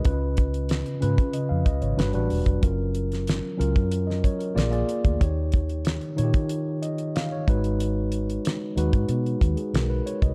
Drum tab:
HH |x-xxxxxxx-xxxxox|x-xxx-xxx-xxxxxx|x-xxxxxxx-xxx-xx|x-xxx-xxxxxxx-xx|
SD |----o-------o---|---oo----o--o---|----o-------o---|----o-------o---|
BD |o-o----o--o----o|o------o--o----o|o-o----o------o-|-------o--o----o|